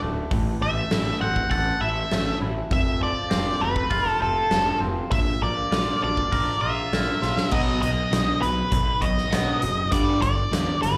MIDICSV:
0, 0, Header, 1, 5, 480
1, 0, Start_track
1, 0, Tempo, 601202
1, 251, Time_signature, 4, 2, 24, 8
1, 8762, End_track
2, 0, Start_track
2, 0, Title_t, "Lead electric guitar"
2, 0, Program_c, 0, 29
2, 497, Note_on_c, 0, 76, 90
2, 941, Note_off_c, 0, 76, 0
2, 968, Note_on_c, 0, 78, 90
2, 1192, Note_off_c, 0, 78, 0
2, 1205, Note_on_c, 0, 78, 90
2, 1430, Note_off_c, 0, 78, 0
2, 1444, Note_on_c, 0, 76, 76
2, 1895, Note_off_c, 0, 76, 0
2, 2177, Note_on_c, 0, 76, 111
2, 2397, Note_off_c, 0, 76, 0
2, 2418, Note_on_c, 0, 74, 109
2, 2885, Note_on_c, 0, 71, 85
2, 2907, Note_off_c, 0, 74, 0
2, 3268, Note_off_c, 0, 71, 0
2, 3268, Note_on_c, 0, 69, 85
2, 3366, Note_off_c, 0, 69, 0
2, 3369, Note_on_c, 0, 69, 72
2, 3817, Note_off_c, 0, 69, 0
2, 4082, Note_on_c, 0, 76, 93
2, 4332, Note_off_c, 0, 76, 0
2, 4335, Note_on_c, 0, 74, 90
2, 4811, Note_off_c, 0, 74, 0
2, 4820, Note_on_c, 0, 74, 77
2, 5278, Note_on_c, 0, 76, 80
2, 5502, Note_off_c, 0, 74, 0
2, 6004, Note_on_c, 0, 75, 80
2, 6025, Note_off_c, 0, 76, 0
2, 6229, Note_off_c, 0, 75, 0
2, 6241, Note_on_c, 0, 75, 87
2, 6717, Note_off_c, 0, 75, 0
2, 6720, Note_on_c, 0, 71, 82
2, 7196, Note_on_c, 0, 75, 94
2, 7219, Note_off_c, 0, 71, 0
2, 7891, Note_off_c, 0, 75, 0
2, 7922, Note_on_c, 0, 74, 90
2, 8150, Note_off_c, 0, 74, 0
2, 8159, Note_on_c, 0, 74, 99
2, 8638, Note_off_c, 0, 74, 0
2, 8641, Note_on_c, 0, 71, 77
2, 8762, Note_off_c, 0, 71, 0
2, 8762, End_track
3, 0, Start_track
3, 0, Title_t, "Clean electric guitar"
3, 0, Program_c, 1, 27
3, 0, Note_on_c, 1, 45, 63
3, 0, Note_on_c, 1, 50, 62
3, 0, Note_on_c, 1, 66, 76
3, 19, Note_on_c, 1, 57, 66
3, 246, Note_off_c, 1, 45, 0
3, 250, Note_off_c, 1, 66, 0
3, 252, Note_off_c, 1, 50, 0
3, 255, Note_on_c, 1, 45, 68
3, 488, Note_off_c, 1, 57, 0
3, 488, Note_on_c, 1, 57, 68
3, 731, Note_on_c, 1, 64, 60
3, 968, Note_on_c, 1, 60, 62
3, 1206, Note_on_c, 1, 69, 79
3, 1435, Note_off_c, 1, 64, 0
3, 1445, Note_on_c, 1, 64, 63
3, 1452, Note_off_c, 1, 45, 0
3, 1682, Note_off_c, 1, 57, 0
3, 1691, Note_on_c, 1, 57, 67
3, 1919, Note_off_c, 1, 64, 0
3, 1929, Note_on_c, 1, 64, 71
3, 2159, Note_on_c, 1, 41, 65
3, 2167, Note_off_c, 1, 69, 0
3, 2168, Note_off_c, 1, 60, 0
3, 2169, Note_off_c, 1, 64, 0
3, 2170, Note_off_c, 1, 57, 0
3, 2398, Note_on_c, 1, 53, 72
3, 2635, Note_on_c, 1, 60, 64
3, 2876, Note_on_c, 1, 57, 62
3, 3116, Note_on_c, 1, 65, 83
3, 3343, Note_off_c, 1, 60, 0
3, 3353, Note_on_c, 1, 60, 69
3, 3364, Note_off_c, 1, 41, 0
3, 3590, Note_off_c, 1, 53, 0
3, 3600, Note_on_c, 1, 53, 60
3, 3829, Note_off_c, 1, 60, 0
3, 3838, Note_on_c, 1, 60, 65
3, 4074, Note_on_c, 1, 46, 64
3, 4082, Note_off_c, 1, 57, 0
3, 4082, Note_off_c, 1, 65, 0
3, 4083, Note_off_c, 1, 60, 0
3, 4084, Note_off_c, 1, 53, 0
3, 4325, Note_on_c, 1, 58, 64
3, 4562, Note_on_c, 1, 65, 59
3, 4805, Note_on_c, 1, 62, 61
3, 5045, Note_on_c, 1, 70, 74
3, 5277, Note_off_c, 1, 65, 0
3, 5281, Note_off_c, 1, 46, 0
3, 5286, Note_on_c, 1, 65, 62
3, 5521, Note_off_c, 1, 58, 0
3, 5530, Note_on_c, 1, 58, 58
3, 5755, Note_off_c, 1, 65, 0
3, 5764, Note_on_c, 1, 65, 66
3, 5999, Note_on_c, 1, 47, 83
3, 6006, Note_off_c, 1, 58, 0
3, 6006, Note_on_c, 1, 54, 84
3, 6007, Note_off_c, 1, 62, 0
3, 6007, Note_off_c, 1, 65, 0
3, 6007, Note_off_c, 1, 70, 0
3, 6009, Note_on_c, 1, 59, 95
3, 6230, Note_off_c, 1, 47, 0
3, 6233, Note_off_c, 1, 54, 0
3, 6235, Note_off_c, 1, 59, 0
3, 6245, Note_on_c, 1, 47, 59
3, 6249, Note_on_c, 1, 54, 76
3, 6463, Note_off_c, 1, 47, 0
3, 6465, Note_off_c, 1, 54, 0
3, 6479, Note_on_c, 1, 47, 65
3, 6483, Note_on_c, 1, 54, 69
3, 6700, Note_off_c, 1, 47, 0
3, 6702, Note_off_c, 1, 54, 0
3, 6721, Note_on_c, 1, 47, 63
3, 6724, Note_on_c, 1, 54, 68
3, 6941, Note_off_c, 1, 47, 0
3, 6943, Note_off_c, 1, 54, 0
3, 6962, Note_on_c, 1, 47, 75
3, 6965, Note_on_c, 1, 54, 91
3, 7182, Note_off_c, 1, 47, 0
3, 7183, Note_off_c, 1, 54, 0
3, 7203, Note_on_c, 1, 47, 60
3, 7207, Note_on_c, 1, 54, 72
3, 7422, Note_off_c, 1, 47, 0
3, 7424, Note_off_c, 1, 54, 0
3, 7441, Note_on_c, 1, 47, 69
3, 7447, Note_on_c, 1, 54, 77
3, 7451, Note_on_c, 1, 59, 88
3, 7671, Note_off_c, 1, 47, 0
3, 7674, Note_off_c, 1, 54, 0
3, 7676, Note_off_c, 1, 59, 0
3, 7688, Note_on_c, 1, 47, 73
3, 7688, Note_on_c, 1, 54, 82
3, 7905, Note_off_c, 1, 47, 0
3, 7905, Note_off_c, 1, 54, 0
3, 7920, Note_on_c, 1, 43, 75
3, 7928, Note_on_c, 1, 50, 85
3, 7931, Note_on_c, 1, 55, 81
3, 8150, Note_off_c, 1, 43, 0
3, 8154, Note_off_c, 1, 50, 0
3, 8156, Note_off_c, 1, 55, 0
3, 8161, Note_on_c, 1, 43, 72
3, 8167, Note_on_c, 1, 50, 75
3, 8382, Note_off_c, 1, 43, 0
3, 8384, Note_off_c, 1, 50, 0
3, 8404, Note_on_c, 1, 43, 70
3, 8406, Note_on_c, 1, 50, 72
3, 8623, Note_off_c, 1, 43, 0
3, 8624, Note_off_c, 1, 50, 0
3, 8638, Note_on_c, 1, 43, 64
3, 8645, Note_on_c, 1, 50, 69
3, 8762, Note_off_c, 1, 43, 0
3, 8762, Note_off_c, 1, 50, 0
3, 8762, End_track
4, 0, Start_track
4, 0, Title_t, "Picked electric bass"
4, 0, Program_c, 2, 34
4, 18, Note_on_c, 2, 26, 86
4, 168, Note_off_c, 2, 26, 0
4, 252, Note_on_c, 2, 33, 91
4, 405, Note_off_c, 2, 33, 0
4, 492, Note_on_c, 2, 33, 81
4, 645, Note_off_c, 2, 33, 0
4, 730, Note_on_c, 2, 33, 84
4, 883, Note_off_c, 2, 33, 0
4, 968, Note_on_c, 2, 33, 84
4, 1122, Note_off_c, 2, 33, 0
4, 1202, Note_on_c, 2, 33, 92
4, 1357, Note_off_c, 2, 33, 0
4, 1451, Note_on_c, 2, 33, 77
4, 1603, Note_off_c, 2, 33, 0
4, 1690, Note_on_c, 2, 33, 90
4, 1842, Note_off_c, 2, 33, 0
4, 1925, Note_on_c, 2, 33, 88
4, 2079, Note_off_c, 2, 33, 0
4, 2162, Note_on_c, 2, 29, 97
4, 2470, Note_off_c, 2, 29, 0
4, 2645, Note_on_c, 2, 29, 86
4, 2799, Note_off_c, 2, 29, 0
4, 2882, Note_on_c, 2, 29, 85
4, 3037, Note_off_c, 2, 29, 0
4, 3119, Note_on_c, 2, 29, 98
4, 3275, Note_off_c, 2, 29, 0
4, 3359, Note_on_c, 2, 29, 82
4, 3515, Note_off_c, 2, 29, 0
4, 3601, Note_on_c, 2, 29, 82
4, 3756, Note_off_c, 2, 29, 0
4, 3841, Note_on_c, 2, 29, 87
4, 3996, Note_off_c, 2, 29, 0
4, 4085, Note_on_c, 2, 34, 91
4, 4239, Note_off_c, 2, 34, 0
4, 4330, Note_on_c, 2, 34, 84
4, 4482, Note_off_c, 2, 34, 0
4, 4566, Note_on_c, 2, 34, 85
4, 4720, Note_off_c, 2, 34, 0
4, 4817, Note_on_c, 2, 34, 88
4, 4967, Note_off_c, 2, 34, 0
4, 5050, Note_on_c, 2, 34, 86
4, 5202, Note_off_c, 2, 34, 0
4, 5286, Note_on_c, 2, 34, 79
4, 5440, Note_off_c, 2, 34, 0
4, 5531, Note_on_c, 2, 34, 88
4, 5683, Note_off_c, 2, 34, 0
4, 5769, Note_on_c, 2, 34, 85
4, 5922, Note_off_c, 2, 34, 0
4, 6004, Note_on_c, 2, 35, 94
4, 6151, Note_off_c, 2, 35, 0
4, 6250, Note_on_c, 2, 35, 77
4, 6396, Note_off_c, 2, 35, 0
4, 6488, Note_on_c, 2, 35, 76
4, 6634, Note_off_c, 2, 35, 0
4, 6732, Note_on_c, 2, 35, 82
4, 6877, Note_off_c, 2, 35, 0
4, 6961, Note_on_c, 2, 35, 90
4, 7109, Note_off_c, 2, 35, 0
4, 7200, Note_on_c, 2, 35, 82
4, 7348, Note_off_c, 2, 35, 0
4, 7446, Note_on_c, 2, 35, 82
4, 7592, Note_off_c, 2, 35, 0
4, 7685, Note_on_c, 2, 30, 83
4, 7832, Note_off_c, 2, 30, 0
4, 7923, Note_on_c, 2, 31, 93
4, 8070, Note_off_c, 2, 31, 0
4, 8161, Note_on_c, 2, 31, 82
4, 8310, Note_off_c, 2, 31, 0
4, 8401, Note_on_c, 2, 40, 83
4, 8550, Note_off_c, 2, 40, 0
4, 8644, Note_on_c, 2, 31, 85
4, 8762, Note_off_c, 2, 31, 0
4, 8762, End_track
5, 0, Start_track
5, 0, Title_t, "Drums"
5, 247, Note_on_c, 9, 46, 57
5, 250, Note_on_c, 9, 36, 105
5, 327, Note_off_c, 9, 46, 0
5, 329, Note_off_c, 9, 36, 0
5, 725, Note_on_c, 9, 46, 49
5, 728, Note_on_c, 9, 38, 104
5, 805, Note_off_c, 9, 46, 0
5, 808, Note_off_c, 9, 38, 0
5, 1086, Note_on_c, 9, 36, 73
5, 1166, Note_off_c, 9, 36, 0
5, 1205, Note_on_c, 9, 36, 89
5, 1205, Note_on_c, 9, 46, 47
5, 1285, Note_off_c, 9, 36, 0
5, 1285, Note_off_c, 9, 46, 0
5, 1686, Note_on_c, 9, 46, 47
5, 1689, Note_on_c, 9, 38, 92
5, 1766, Note_off_c, 9, 46, 0
5, 1769, Note_off_c, 9, 38, 0
5, 2165, Note_on_c, 9, 36, 109
5, 2166, Note_on_c, 9, 46, 48
5, 2245, Note_off_c, 9, 36, 0
5, 2245, Note_off_c, 9, 46, 0
5, 2639, Note_on_c, 9, 46, 46
5, 2642, Note_on_c, 9, 38, 105
5, 2719, Note_off_c, 9, 46, 0
5, 2722, Note_off_c, 9, 38, 0
5, 3001, Note_on_c, 9, 36, 79
5, 3081, Note_off_c, 9, 36, 0
5, 3114, Note_on_c, 9, 46, 47
5, 3120, Note_on_c, 9, 36, 93
5, 3194, Note_off_c, 9, 46, 0
5, 3200, Note_off_c, 9, 36, 0
5, 3599, Note_on_c, 9, 46, 47
5, 3602, Note_on_c, 9, 38, 91
5, 3678, Note_off_c, 9, 46, 0
5, 3682, Note_off_c, 9, 38, 0
5, 4085, Note_on_c, 9, 36, 114
5, 4085, Note_on_c, 9, 46, 51
5, 4165, Note_off_c, 9, 36, 0
5, 4165, Note_off_c, 9, 46, 0
5, 4567, Note_on_c, 9, 46, 48
5, 4570, Note_on_c, 9, 38, 111
5, 4647, Note_off_c, 9, 46, 0
5, 4650, Note_off_c, 9, 38, 0
5, 4929, Note_on_c, 9, 36, 74
5, 5009, Note_off_c, 9, 36, 0
5, 5050, Note_on_c, 9, 36, 89
5, 5051, Note_on_c, 9, 46, 49
5, 5130, Note_off_c, 9, 36, 0
5, 5131, Note_off_c, 9, 46, 0
5, 5532, Note_on_c, 9, 46, 49
5, 5535, Note_on_c, 9, 38, 95
5, 5612, Note_off_c, 9, 46, 0
5, 5615, Note_off_c, 9, 38, 0
5, 5766, Note_on_c, 9, 38, 54
5, 5846, Note_off_c, 9, 38, 0
5, 5887, Note_on_c, 9, 38, 82
5, 5967, Note_off_c, 9, 38, 0
5, 5998, Note_on_c, 9, 49, 109
5, 6006, Note_on_c, 9, 36, 105
5, 6078, Note_off_c, 9, 49, 0
5, 6086, Note_off_c, 9, 36, 0
5, 6247, Note_on_c, 9, 42, 60
5, 6327, Note_off_c, 9, 42, 0
5, 6487, Note_on_c, 9, 42, 83
5, 6490, Note_on_c, 9, 38, 103
5, 6567, Note_off_c, 9, 42, 0
5, 6570, Note_off_c, 9, 38, 0
5, 6727, Note_on_c, 9, 42, 61
5, 6807, Note_off_c, 9, 42, 0
5, 6958, Note_on_c, 9, 42, 90
5, 6962, Note_on_c, 9, 36, 108
5, 7038, Note_off_c, 9, 42, 0
5, 7042, Note_off_c, 9, 36, 0
5, 7198, Note_on_c, 9, 42, 66
5, 7201, Note_on_c, 9, 36, 82
5, 7278, Note_off_c, 9, 42, 0
5, 7281, Note_off_c, 9, 36, 0
5, 7327, Note_on_c, 9, 38, 33
5, 7406, Note_off_c, 9, 38, 0
5, 7443, Note_on_c, 9, 42, 82
5, 7447, Note_on_c, 9, 38, 93
5, 7523, Note_off_c, 9, 42, 0
5, 7526, Note_off_c, 9, 38, 0
5, 7679, Note_on_c, 9, 42, 60
5, 7758, Note_off_c, 9, 42, 0
5, 7917, Note_on_c, 9, 42, 97
5, 7921, Note_on_c, 9, 36, 111
5, 7996, Note_off_c, 9, 42, 0
5, 8001, Note_off_c, 9, 36, 0
5, 8162, Note_on_c, 9, 42, 64
5, 8163, Note_on_c, 9, 36, 75
5, 8242, Note_off_c, 9, 42, 0
5, 8243, Note_off_c, 9, 36, 0
5, 8406, Note_on_c, 9, 42, 93
5, 8409, Note_on_c, 9, 38, 106
5, 8486, Note_off_c, 9, 42, 0
5, 8489, Note_off_c, 9, 38, 0
5, 8645, Note_on_c, 9, 42, 65
5, 8724, Note_off_c, 9, 42, 0
5, 8762, End_track
0, 0, End_of_file